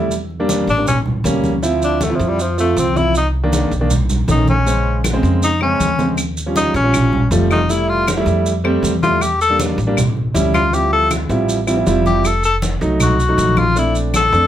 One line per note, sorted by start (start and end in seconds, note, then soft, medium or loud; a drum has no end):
0.00 0.62 E2 medium
0.00 0.11 G3 medium
0.00 0.11 A3 medium
0.00 0.11 E4 medium
0.11 high conga soft
0.11 maracas medium
0.30 high conga soft
0.40 0.66 G3 medium
0.40 0.66 A#3 medium
0.40 0.67 D4 loud
0.49 high conga loud
0.49 maracas medium
0.67 1.21 A1 medium
0.67 0.87 D4 loud
0.67 high conga soft
0.67 maracas soft
0.77 0.87 G3 medium
0.77 0.87 A#3 medium
0.77 0.87 D4 medium
0.87 0.99 C#4 medium
0.87 high conga soft
0.87 low conga medium
0.87 maracas medium
1.06 high conga soft
1.06 low conga medium
1.24 2.14 D2 medium
1.24 1.52 G3 medium
1.24 1.52 A#3 medium
1.24 1.52 C#4 loud
1.24 high conga medium
1.24 maracas medium
1.44 high conga medium
1.44 maracas soft
1.62 1.96 F3 loud
1.62 1.96 C4 medium
1.62 1.96 E4 loud
1.62 high conga soft
1.62 maracas medium
1.82 2.05 D4 medium
1.82 high conga soft
1.82 maracas medium
2.01 2.18 A3 medium
2.01 high conga medium
2.01 maracas medium
2.10 2.43 F3 medium
2.10 2.44 C4 medium
2.10 2.44 E4 medium
2.16 2.73 F2 medium
2.16 2.30 F3 medium
2.16 high conga soft
2.20 maracas soft
2.29 2.43 G3 medium
2.39 2.59 F3 medium
2.39 high conga soft
2.39 maracas medium
2.58 2.85 F3 medium
2.58 2.81 A3 medium
2.58 2.85 C4 medium
2.58 2.85 F4 medium
2.58 high conga soft
2.58 maracas medium
2.76 3.66 C2 medium
2.76 2.99 C4 medium
2.76 high conga medium
2.76 maracas medium
2.95 3.15 F3 medium
2.95 3.15 C4 medium
2.95 3.15 E4 medium
2.95 3.16 E4 loud
2.95 high conga medium
2.95 maracas soft
3.15 3.28 D#4 medium
3.15 high conga soft
3.15 maracas medium
3.34 high conga soft
3.43 3.70 D#3 medium
3.43 3.70 A#3 medium
3.43 3.70 D4 loud
3.53 high conga medium
3.53 maracas medium
3.71 4.24 B1 medium
3.71 high conga soft
3.71 maracas soft
3.81 3.91 D#3 medium
3.81 3.90 A#3 medium
3.81 3.91 D4 medium
3.90 high conga soft
3.90 low conga medium
3.90 maracas medium
4.10 high conga soft
4.10 low conga medium
4.10 maracas medium
4.28 5.17 A#1 medium
4.28 4.55 D#3 medium
4.28 4.55 A3 medium
4.28 4.55 C#4 medium
4.28 4.48 D#4 medium
4.28 high conga medium
4.28 maracas medium
4.48 5.02 C#4 medium
4.48 high conga medium
4.48 maracas soft
4.66 5.00 C#3 medium
4.66 5.00 G#3 medium
4.66 5.00 C5 medium
4.66 high conga soft
4.66 maracas medium
4.86 high conga soft
5.04 high conga medium
5.04 claves medium
5.04 maracas medium
5.13 5.47 C#3 medium
5.13 5.47 G#3 medium
5.13 5.47 C4 loud
5.23 5.76 F2 medium
5.23 high conga soft
5.23 maracas soft
5.42 5.61 D#4 medium
5.42 high conga soft
5.42 maracas medium
5.61 5.88 C#3 medium
5.61 5.88 G#3 medium
5.61 5.88 C4 medium
5.61 6.15 C#4 medium
5.61 high conga soft
5.61 claves medium
5.80 6.69 D#2 medium
5.80 high conga medium
5.80 maracas medium
5.98 6.18 C#3 medium
5.98 6.18 G#3 medium
5.98 6.18 C4 medium
5.98 high conga medium
5.98 maracas soft
6.18 high conga soft
6.18 claves medium
6.18 maracas medium
6.37 high conga soft
6.37 maracas medium
6.46 6.73 F3 medium
6.46 6.73 G3 medium
6.46 6.73 C#4 medium
6.56 6.74 D#4 loud
6.56 high conga medium
6.56 maracas medium
6.74 7.28 A#1 loud
6.74 7.28 C#4 loud
6.74 high conga soft
6.74 maracas soft
6.84 7.17 F3 medium
6.84 7.18 G3 medium
6.84 7.18 C#4 medium
6.94 high conga soft
6.94 low conga medium
6.94 claves medium
6.94 maracas medium
7.13 high conga soft
7.13 low conga medium
7.31 8.20 F1 medium
7.31 7.58 F3 loud
7.31 7.58 G3 medium
7.31 7.59 A3 loud
7.31 high conga medium
7.31 maracas medium
7.51 7.73 D#4 medium
7.51 high conga medium
7.51 claves medium
7.51 maracas soft
7.69 8.03 G3 medium
7.69 8.03 A3 medium
7.69 8.03 E4 medium
7.69 7.91 E4 medium
7.69 high conga soft
7.69 maracas medium
7.89 8.08 F4 loud
7.89 high conga soft
8.08 high conga medium
8.08 claves medium
8.08 maracas medium
8.17 8.50 G3 loud
8.17 8.50 A3 medium
8.17 8.50 E4 loud
8.26 8.79 F2 loud
8.26 high conga soft
8.26 maracas soft
8.46 high conga soft
8.46 maracas medium
8.64 8.91 G3 loud
8.64 8.91 A3 loud
8.64 8.91 C4 loud
8.64 high conga soft
8.64 claves medium
8.83 9.72 E2 medium
8.83 high conga medium
8.83 maracas medium
9.02 9.22 G3 medium
9.02 9.22 A3 medium
9.02 9.22 E4 medium
9.02 9.24 F4 medium
9.02 high conga medium
9.02 maracas soft
9.21 9.41 G4 medium
9.21 high conga soft
9.21 claves medium
9.21 maracas medium
9.41 9.59 A4 loud
9.41 high conga soft
9.41 maracas medium
9.50 9.76 G3 medium
9.50 9.76 A#3 medium
9.50 9.76 D4 medium
9.60 high conga loud
9.60 maracas medium
9.78 10.31 A1 medium
9.78 high conga soft
9.78 maracas soft
9.87 9.97 G3 medium
9.87 9.97 A#3 medium
9.87 9.97 D4 loud
9.97 high conga soft
9.97 low conga medium
9.97 claves medium
9.97 maracas medium
10.17 high conga soft
10.34 11.24 D2 loud
10.34 10.61 G3 medium
10.34 10.61 C#4 medium
10.34 10.62 E4 loud
10.34 high conga medium
10.34 maracas medium
10.54 10.76 F4 loud
10.54 high conga medium
10.54 claves medium
10.54 maracas soft
10.73 11.13 F3 medium
10.73 11.13 G3 medium
10.73 11.13 C4 medium
10.73 11.13 E4 medium
10.73 10.92 G4 medium
10.73 high conga soft
10.73 maracas medium
10.92 11.10 A4 loud
10.92 high conga soft
11.11 high conga medium
11.11 claves medium
11.11 maracas medium
11.29 11.83 A1 medium
11.29 11.56 F3 medium
11.29 11.57 G3 medium
11.29 11.57 C4 medium
11.29 11.57 E4 loud
11.29 high conga soft
11.29 maracas soft
11.49 high conga soft
11.49 maracas medium
11.67 11.74 F3 medium
11.67 11.74 G3 medium
11.67 11.74 C4 medium
11.67 11.74 E4 loud
11.67 high conga soft
11.67 claves medium
11.67 maracas medium
11.77 11.84 F3 medium
11.77 11.84 G3 medium
11.77 11.84 C4 medium
11.77 11.84 E4 medium
11.87 12.76 F1 medium
11.87 12.25 F3 loud
11.87 12.25 G3 medium
11.87 12.25 C4 medium
11.87 12.25 E4 loud
11.87 high conga medium
11.87 maracas medium
12.06 12.28 G4 medium
12.06 high conga medium
12.06 maracas soft
12.24 12.45 A4 medium
12.24 high conga soft
12.24 claves medium
12.24 maracas medium
12.43 12.56 A4 loud
12.43 high conga soft
12.43 maracas medium
12.62 high conga medium
12.62 maracas medium
12.81 13.34 C2 medium
12.81 13.15 F#3 medium
12.81 13.15 A3 medium
12.81 13.15 D#4 loud
12.81 high conga soft
12.81 maracas soft
13.00 13.60 F#4 medium
13.00 high conga soft
13.00 low conga medium
13.00 claves medium
13.00 maracas medium
13.19 high conga soft
13.19 maracas medium
13.28 13.62 F#3 medium
13.28 13.62 A3 medium
13.28 13.62 D#4 medium
13.38 14.27 A#1 medium
13.38 high conga medium
13.38 maracas medium
13.57 13.80 F4 loud
13.57 high conga medium
13.57 claves medium
13.57 maracas soft
13.76 14.16 A3 medium
13.76 14.16 C4 medium
13.76 14.16 D4 medium
13.76 13.96 E4 medium
13.76 high conga soft
13.76 maracas medium
13.95 high conga soft
13.95 maracas medium
14.14 14.47 A4 loud
14.14 high conga medium
14.14 claves medium
14.14 maracas medium
14.32 14.47 F2 medium
14.32 14.47 A3 medium
14.32 14.47 C4 medium
14.32 14.47 D4 medium
14.32 high conga soft
14.32 maracas soft